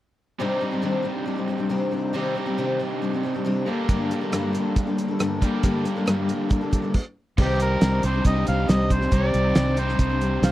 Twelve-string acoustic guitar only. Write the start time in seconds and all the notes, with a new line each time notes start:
0.40 C3 D#3 G3 C4 D4 G4
0.60 G3 C4 D4 G4
0.71 G3 C4 D4 G4
0.82 C3 D#3 G3 C4 D4 G4
1.03 G3 C4 D4 G4
1.26 G3 C4 D4 G4
1.36 G3 C4 D4 G4
1.48 G3 C4 D4 G4
1.58 G3 C4 D4 G4
1.69 C3 D#3 G3 C4 D4 G4
1.91 G3 C4 D4 G4
2.13 C3 D#3 G3 C4 D4 G4
2.35 G3 C4 D4 G4
2.46 G3 C4 D4 G4
2.58 C3 D#3 G3 C4 D4 G4
2.79 G3 C4 D4 G4
3.02 G3 C4 D4 G4
3.13 G3 C4 D4 G4
3.23 G3 C4 D4 G4
3.34 G3 C4 D4 G4
3.44 C3 D#3 G3 C4 D4 G4
3.66 G3 A#3 D4 A4
3.88 G2 D3 G3 A#3 D4 A4
4.11 G3 A#3 D4 A4
4.21 G3 A#3 D4 A4
4.32 G2 D3 G3 A#3 D4 A4
4.53 G3 A#3 D4 A4
4.76 G3 A#3 D4 A4
4.87 G3 A#3 D4 A4
4.97 G3 A#3 D4 A4
5.08 G3 A#3 D4 A4
5.19 G2 D3 G3 A#3 D4 A4
5.41 G3 A#3 D4 A4
5.63 G2 D3 G3 A#3 D4 A4
5.85 G3 A#3 D4 A4
5.96 G3 A#3 D4 A4
6.06 G2 D3 G3 A#3 D4 A4
6.28 G3 A#3 D4 A4
6.49 G3 A#3 D4 A4
6.61 G3 A#3 D4 A4
6.71 G3 A#3 D4 A4
6.82 G3 A#3 D4 A4
7.38 C3 D#3 G3 C4 G4
7.81 C3 D#3 G3 C4 D4 G4
8.02 G3 C4 D4 G4
8.13 G3 C4 D4 G4
8.34 G3 C4 D4 G4
8.45 G3 C4 D4 G4
8.68 C3 D#3 G3 C4 D4 G4
8.89 G3 C4 D4 G4
9.01 G3 C4 D4 G4
9.11 C3 D#3 G3 C4 G4
9.55 C3 D#3 G3 C4 D4 G4
9.77 G3 C4 D4 G4
9.87 G3 C4 D4 G4
10.09 G3 C4 D4 G4
10.21 G3 C4 D4 G4
10.43 C3 D#3 G3 C4 D4 G4